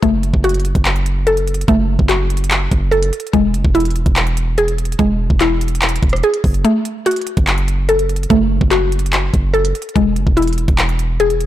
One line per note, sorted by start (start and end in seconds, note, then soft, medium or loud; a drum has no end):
0.02 0.32 F#1 loud
0.02 1.67 A3 loud
0.02 kick loud
0.02 closed hi-hat medium
0.23 closed hi-hat medium
0.34 0.73 F#1 loud
0.34 kick medium
0.44 2.08 F#4 medium
0.44 closed hi-hat medium
0.49 closed hi-hat medium
0.54 closed hi-hat medium
0.60 closed hi-hat soft
0.65 closed hi-hat medium
0.75 1.64 F#1 loud
0.75 kick loud
0.75 closed hi-hat medium
0.85 clap loud
0.85 closed hi-hat medium
0.96 closed hi-hat medium
1.06 closed hi-hat medium
1.27 2.90 A4 medium
1.27 closed hi-hat medium
1.37 closed hi-hat medium
1.47 closed hi-hat medium
1.54 closed hi-hat medium
1.61 closed hi-hat medium
1.68 1.98 F#1 loud
1.68 3.34 A3 loud
1.68 kick loud
1.68 closed hi-hat medium
1.99 2.69 F#1 loud
1.99 kick medium
2.09 3.33 F#4 medium
2.09 clap medium
2.09 closed hi-hat medium
2.30 closed hi-hat medium
2.37 closed hi-hat medium
2.44 closed hi-hat medium
2.51 clap loud
2.51 closed hi-hat medium
2.72 3.11 F#1 loud
2.72 kick medium
2.72 closed hi-hat medium
2.91 3.33 A4 medium
2.91 closed hi-hat soft
3.03 closed hi-hat medium
3.13 closed hi-hat medium
3.20 closed hi-hat medium
3.27 closed hi-hat soft
3.33 3.56 E1 loud
3.33 4.98 G#3 loud
3.33 kick loud
3.33 closed hi-hat medium
3.54 3.64 F#1 loud
3.54 closed hi-hat medium
3.65 4.04 E1 loud
3.65 kick loud
3.75 5.40 E4 medium
3.75 closed hi-hat medium
3.80 closed hi-hat medium
3.85 closed hi-hat medium
3.90 closed hi-hat soft
3.96 closed hi-hat medium
4.06 4.95 E1 loud
4.06 kick loud
4.06 closed hi-hat medium
4.16 clap loud
4.16 closed hi-hat medium
4.27 closed hi-hat medium
4.37 closed hi-hat medium
4.58 6.22 G#4 loud
4.58 closed hi-hat medium
4.68 closed hi-hat medium
4.78 closed hi-hat medium
4.85 closed hi-hat medium
4.92 closed hi-hat medium
4.99 5.29 E1 loud
4.99 6.65 G#3 medium
4.99 kick loud
4.99 closed hi-hat medium
5.30 6.00 E1 loud
5.30 kick loud
5.40 6.65 E4 medium
5.40 clap medium
5.40 closed hi-hat medium
5.61 closed hi-hat medium
5.68 closed hi-hat medium
5.75 closed hi-hat medium
5.82 clap loud
5.82 closed hi-hat medium
5.89 closed hi-hat medium
5.96 closed hi-hat medium
6.03 6.22 E1 loud
6.03 kick medium
6.03 closed hi-hat medium
6.09 cross-stick loud
6.09 closed hi-hat medium
6.16 closed hi-hat medium
6.23 6.65 G#4 medium
6.23 closed hi-hat soft
6.34 closed hi-hat medium
6.44 6.64 F#1 loud
6.44 kick loud
6.44 closed hi-hat soft
6.44 open hi-hat medium
6.54 closed hi-hat medium
6.65 8.29 A3 loud
6.65 closed hi-hat medium
6.85 closed hi-hat medium
7.06 8.70 F#4 medium
7.06 closed hi-hat medium
7.11 closed hi-hat medium
7.16 closed hi-hat medium
7.21 closed hi-hat soft
7.27 closed hi-hat medium
7.37 8.26 F#1 loud
7.37 kick loud
7.37 closed hi-hat medium
7.47 clap loud
7.47 closed hi-hat medium
7.58 closed hi-hat medium
7.68 closed hi-hat medium
7.89 9.52 A4 medium
7.89 closed hi-hat medium
7.99 closed hi-hat medium
8.09 closed hi-hat medium
8.16 closed hi-hat medium
8.23 closed hi-hat medium
8.30 8.60 F#1 loud
8.30 9.96 A3 loud
8.30 kick loud
8.30 closed hi-hat medium
8.61 9.31 F#1 loud
8.61 kick medium
8.71 9.95 F#4 medium
8.71 clap medium
8.71 closed hi-hat medium
8.92 closed hi-hat medium
8.99 closed hi-hat medium
9.06 closed hi-hat medium
9.13 clap loud
9.13 closed hi-hat medium
9.34 9.73 F#1 loud
9.34 kick medium
9.34 closed hi-hat medium
9.54 9.95 A4 medium
9.54 closed hi-hat soft
9.65 closed hi-hat medium
9.75 closed hi-hat medium
9.82 closed hi-hat medium
9.89 closed hi-hat soft
9.96 10.18 E1 loud
9.96 11.46 G#3 medium
9.96 kick loud
9.96 closed hi-hat medium
10.16 10.26 F#1 loud
10.16 closed hi-hat medium
10.27 10.66 E1 loud
10.27 kick medium
10.37 11.46 E4 medium
10.37 closed hi-hat medium
10.42 closed hi-hat medium
10.47 closed hi-hat medium
10.53 closed hi-hat soft
10.58 closed hi-hat medium
10.68 11.46 E1 loud
10.68 kick loud
10.68 closed hi-hat medium
10.78 clap loud
10.78 closed hi-hat medium
10.89 closed hi-hat medium
10.99 closed hi-hat medium
11.20 11.46 G#4 loud
11.20 closed hi-hat medium
11.30 closed hi-hat medium
11.40 closed hi-hat medium